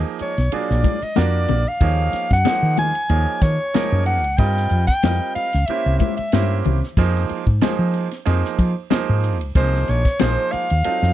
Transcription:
Already playing: grand piano F3 A#3 D#4 G#4 D#5
0.19 soprano saxophone C#5, muted fretless electric bass stroke, hi-hat pedal, ride, muted conga
0.38 fretless electric bass B1, snare, ride
0.52 grand piano F#3 A#3 D4 F4 G#4, soprano saxophone D5, ride, muted conga
0.70 fretless electric bass A#1, snare
0.84 kick, hi-hat pedal, ride, high conga
1.02 soprano saxophone D#5, muted fretless electric bass stroke, ride
1.16 fretless electric bass F2, grand piano A#3 D4 F4 F#4 A#4, soprano saxophone D5, snare, ride, high conga
1.48 fretless electric bass A#1, hi-hat pedal, ride, low conga
1.68 soprano saxophone F5
1.80 fretless electric bass D#2, grand piano F3 A#3 D#4 G#4 C#5, kick, ride, muted conga
2.13 snare, hi-hat pedal, ride, muted conga
2.31 fretless electric bass F#2, soprano saxophone F#5, kick, snare
2.45 grand piano F3 A#3 D#4 G#4 C5, snare, ride, high conga
2.63 fretless electric bass D#3
2.77 soprano saxophone G#5, hi-hat pedal, ride, muted conga, high conga
2.95 ride
3.09 fretless electric bass D#2, grand piano F3 A#3 D#4 G#4 C#5, ride, muted conga
3.41 fretless electric bass D#3, soprano saxophone C#5, kick, snare, hi-hat pedal, ride
3.74 grand piano F3 A#3 D#4 G#4 A#4, muted fretless electric bass stroke, snare, ride, high conga
3.92 fretless electric bass F#2
4.06 soprano saxophone F#5, hi-hat pedal, ride
4.24 fretless electric bass C#2, ride
4.37 fretless electric bass G2, grand piano G3 C4 F4 A#4 D#5, soprano saxophone G5, kick, ride, muted conga
4.57 snare
4.70 fretless electric bass F2, hi-hat pedal, ride, muted conga
4.87 soprano saxophone G5, kick, snare, ride
5.03 fretless electric bass F2, grand piano G3 C4 F4 A#4 D#5, snare, ride, high conga
5.35 soprano saxophone F5, muted fretless electric bass stroke, hi-hat pedal, ride, muted conga
5.53 fretless electric bass C#2, snare, ride
5.66 grand piano A#3 C#4 E4 C5, soprano saxophone E5, muted fretless electric bass stroke, ride, muted conga
5.70 grand piano G4
5.86 fretless electric bass C2
5.99 soprano saxophone E5, kick, hi-hat pedal, ride, high conga
6.17 soprano saxophone E5, muted fretless electric bass stroke, ride
6.32 fretless electric bass G2, grand piano A#3 C#4 E4 G4 C5, snare, ride, high conga
6.64 fretless electric bass C2, hi-hat pedal, ride, low conga
6.83 snare
6.97 fretless electric bass F2, grand piano F3 A#3 D#4 G#4 C5, kick, ride, muted conga
7.16 snare
7.29 muted fretless electric bass stroke, hi-hat pedal, ride, muted conga
7.47 fretless electric bass G#2, kick
7.61 grand piano F3 A#3 D#4 G#4 C5, snare, ride, high conga
7.79 fretless electric bass F3
7.94 hi-hat pedal, ride, muted conga
8.11 snare, ride
8.25 fretless electric bass F2, grand piano F3 A#3 D#4 G#4 C5, ride, muted conga
8.45 snare
8.59 fretless electric bass F3, kick, hi-hat pedal, ride
8.90 grand piano F3 A#3 D#4 G#4 C5, muted fretless electric bass stroke, snare, ride, high conga
9.09 fretless electric bass G#2
9.24 hi-hat pedal, ride
9.41 fretless electric bass C#2, ride
9.55 fretless electric bass C2, grand piano F3 A#3 D#4 G#4 C5, soprano saxophone C5, kick, ride, muted conga
9.74 snare
9.87 fretless electric bass A#1, soprano saxophone C#5, snare, hi-hat pedal, ride, muted conga
10.05 kick, snare, ride
10.20 fretless electric bass A#1, grand piano F3 A#3 D#4 G#4 C5, soprano saxophone C5, snare, ride, high conga
10.52 soprano saxophone F5, muted fretless electric bass stroke, hi-hat pedal, ride, muted conga
10.70 fretless electric bass D#2, ride
10.84 grand piano F#3 C4 D#4 F4 A4, ride, muted conga
11.03 fretless electric bass F2, snare

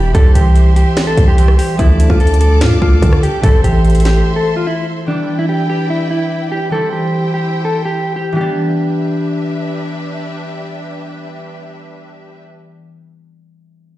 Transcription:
Already playing: 808-style bass E1, harp E3 G3 A3 B3 D4 E4, clean electric guitar G4, string section G4 D5 E5 B5
0.13 808-style bass C2, harp E3 G3 C4 E4, clean electric guitar A4, string section C5 E5 C6, kick, closed hi-hat
0.17 harp G4
0.35 808-style bass C2, clean electric guitar G4, closed hi-hat
0.55 closed hi-hat
0.76 clean electric guitar G4, closed hi-hat
0.97 finger snap, snare, closed hi-hat
1.07 clean electric guitar A4
1.17 808-style bass C2, kick, closed hi-hat
1.28 clean electric guitar G4
1.37 harp E3 G3 C4 E4 G4, closed hi-hat
1.48 cross-stick
1.58 clean electric guitar G4, open hi-hat
1.77 808-style bass D2, harp F3 A3 D4, clean electric guitar E4, string section A4 D5 A5 D6, kick, closed hi-hat
1.81 harp A4
2.00 closed hi-hat
2.10 808-style bass D2, clean electric guitar F4, kick
2.20 clean electric guitar A4, closed hi-hat
2.27 closed hi-hat
2.34 closed hi-hat
2.41 clean electric guitar A4, closed hi-hat
2.61 808-style bass A2, clean electric guitar F4, finger snap, snare, closed hi-hat
2.72 808-style bass D2
2.82 808-style bass D2, clean electric guitar F4, kick
3.02 808-style bass D3, kick, closed hi-hat
3.13 cross-stick
3.23 clean electric guitar G4, closed hi-hat
3.41 808-style bass A1, harp E3 A3 C4 E4, clean electric guitar A4, string section C5 E5 C6, kick, closed hi-hat
3.45 harp A4
3.64 808-style bass A1, clean electric guitar G4, closed hi-hat
3.85 closed hi-hat
3.90 closed hi-hat
3.95 closed hi-hat
4.00 closed hi-hat
4.05 clean electric guitar G4, snare, closed hi-hat
4.36 clean electric guitar A4
4.57 clean electric guitar F4
4.67 clean electric guitar E4
5.06 harp E3 G3 B3, clean electric guitar D4, string section E4 B4 D5 G5
5.10 harp D4
5.39 clean electric guitar E4
5.49 clean electric guitar G4
5.70 clean electric guitar G4
5.90 clean electric guitar E4
6.11 clean electric guitar E4
6.52 clean electric guitar G4
6.70 harp E3 G3 C4, string section E4 G4 C5 G5, clean electric guitar A4
6.74 harp E4
6.93 clean electric guitar G4
7.34 clean electric guitar G4
7.65 clean electric guitar A4
7.85 clean electric guitar G4
8.16 clean electric guitar G4
8.33 harp E3 G3
8.37 harp B3, string section D4 G4 B4 E5, clean electric guitar G4
8.41 harp D4

